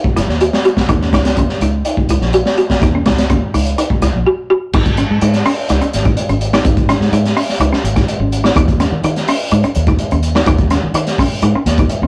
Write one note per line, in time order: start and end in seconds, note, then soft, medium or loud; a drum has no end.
0.04 kick medium
0.17 0.27 F#1 medium
0.17 0.25 E4 medium
0.17 snare soft
0.17 closed hi-hat medium
0.28 0.49 D#2 medium
0.28 snare soft
0.41 0.49 F#4 medium
0.41 closed hi-hat medium
0.53 snare medium
0.65 0.73 F#4 medium
0.65 closed hi-hat medium
0.77 kick medium
0.77 snare medium
0.89 1.09 D#2 medium
0.89 0.97 D#4 medium
0.89 kick medium
0.89 closed hi-hat medium
1.01 1.09 C#4 medium
1.01 snare soft
1.13 1.33 C#2 medium
1.13 1.22 D#4 medium
1.13 kick medium
1.13 snare medium
1.13 closed hi-hat medium
1.25 snare medium
1.25 closed hi-hat medium
1.37 1.47 D#2 medium
1.37 1.47 C#4 medium
1.37 kick medium
1.37 closed hi-hat medium
1.50 snare soft
1.61 1.81 C#2 medium
1.61 1.70 D#4 medium
1.61 closed hi-hat medium
1.85 2.02 D#4 medium
1.85 closed hi-hat medium
1.97 kick medium
2.09 2.20 C#2 medium
2.09 2.19 E4 medium
2.09 closed hi-hat medium
2.21 2.42 A#1 medium
2.21 snare soft
2.33 2.42 F#4 medium
2.33 closed hi-hat medium
2.46 snare medium
2.57 2.66 F#4 medium
2.57 closed hi-hat soft
2.70 kick medium
2.70 snare medium
2.82 3.02 D#2 loud
2.82 2.90 D#4 medium
2.82 kick medium
2.82 snare soft
2.82 closed hi-hat medium
2.95 3.02 C#4 medium
3.06 3.26 C#2 medium
3.06 3.14 D#4 medium
3.06 kick medium
3.06 snare medium
3.06 closed hi-hat medium
3.18 snare medium
3.18 closed hi-hat medium
3.30 3.40 D#2 medium
3.30 3.38 C#4 medium
3.30 kick medium
3.30 closed hi-hat medium
3.54 3.74 C#2 medium
3.54 3.62 D#4 medium
3.54 open hi-hat medium
3.66 closed hi-hat soft
3.78 3.86 D#4 medium
3.78 closed hi-hat medium
3.90 kick medium
4.02 4.12 C#2 medium
4.02 4.10 E4 medium
4.02 snare soft
4.02 closed hi-hat medium
4.14 4.24 A#1 medium
4.27 4.35 F#4 medium
4.50 4.58 F#4 medium
4.73 5.04 G#1 loud
4.73 4.83 D#4 medium
4.73 kick medium
4.73 crash loud
4.86 kick medium
4.86 closed hi-hat soft
4.97 5.06 C#4 medium
4.97 closed hi-hat medium
5.10 5.20 G#2 medium
5.21 5.42 G#2 medium
5.21 5.30 D#4 medium
5.21 closed hi-hat medium
5.33 snare soft
5.33 closed hi-hat soft
5.45 5.54 C#4 medium
5.45 open hi-hat medium
5.69 5.80 C#2 medium
5.69 5.78 D#4 medium
5.69 snare soft
5.69 closed hi-hat medium
5.81 5.89 C#4 medium
5.81 closed hi-hat soft
5.93 6.14 G#1 medium
5.93 snare soft
5.93 closed hi-hat medium
6.05 6.14 D#4 medium
6.05 kick medium
6.05 closed hi-hat soft
6.17 closed hi-hat medium
6.29 6.59 G#1 medium
6.29 6.38 C#4 medium
6.29 closed hi-hat soft
6.41 closed hi-hat medium
6.53 6.61 D#4 medium
6.53 snare medium
6.65 6.95 G#1 loud
6.65 6.80 D#4 medium
6.65 kick loud
6.65 closed hi-hat medium
6.77 kick medium
6.77 closed hi-hat soft
6.89 6.97 C#4 medium
6.89 snare soft
6.89 closed hi-hat medium
7.01 7.11 G#2 medium
7.01 snare soft
7.12 7.33 G#2 medium
7.12 7.21 D#4 medium
7.12 closed hi-hat medium
7.25 snare soft
7.25 closed hi-hat soft
7.37 7.45 C#4 medium
7.37 open hi-hat medium
7.49 snare soft
7.60 7.70 C#2 loud
7.60 7.68 D#4 medium
7.60 closed hi-hat medium
7.72 7.80 C#4 medium
7.72 snare soft
7.84 8.04 G#1 medium
7.84 closed hi-hat medium
7.96 8.04 D#4 medium
7.96 kick medium
7.96 snare soft
7.96 closed hi-hat soft
8.08 closed hi-hat medium
8.19 8.50 G#1 medium
8.19 8.36 C#4 medium
8.32 closed hi-hat medium
8.44 8.52 D#4 medium
8.44 snare medium
8.56 8.86 D#2 medium
8.56 8.65 D#4 medium
8.56 kick loud
8.56 closed hi-hat medium
8.68 kick medium
8.68 closed hi-hat soft
8.80 8.88 C#4 medium
8.80 snare soft
8.80 closed hi-hat medium
8.92 9.02 D#3 medium
9.04 9.24 D#3 medium
9.04 9.12 D#4 medium
9.04 closed hi-hat medium
9.16 snare soft
9.16 closed hi-hat soft
9.28 9.37 C#4 medium
9.28 open hi-hat medium
9.51 9.62 G#2 loud
9.51 9.59 D#4 medium
9.51 closed hi-hat medium
9.63 9.72 C#4 medium
9.63 muted fingered electric bass stroke soft
9.63 closed hi-hat soft
9.75 9.96 D#2 loud
9.75 closed hi-hat medium
9.87 9.96 D#4 medium
9.87 kick medium
9.87 closed hi-hat soft
9.99 closed hi-hat medium
10.11 10.42 D#2 medium
10.11 10.20 C#4 medium
10.11 closed hi-hat soft
10.23 closed hi-hat medium
10.35 10.43 D#4 medium
10.35 snare medium
10.46 10.77 D#2 loud
10.46 10.55 D#4 medium
10.46 kick medium
10.46 closed hi-hat medium
10.58 kick medium
10.58 closed hi-hat soft
10.70 10.79 C#4 medium
10.70 snare soft
10.70 closed hi-hat medium
10.83 10.93 D#3 medium
10.94 11.14 D#3 medium
10.94 11.03 D#4 medium
10.94 closed hi-hat medium
11.07 snare soft
11.07 closed hi-hat soft
11.18 11.27 C#4 medium
11.18 kick medium
11.18 open hi-hat medium
11.42 11.52 G#2 medium
11.42 11.50 D#4 medium
11.42 closed hi-hat medium
11.55 11.63 C#4 medium
11.55 muted fingered electric bass stroke soft
11.66 11.86 D#2 loud
11.66 snare soft
11.66 closed hi-hat medium
11.78 11.87 D#4 medium
11.78 kick medium
11.78 closed hi-hat soft
11.89 closed hi-hat medium
12.02 12.07 D#2 medium
12.02 12.07 C#4 medium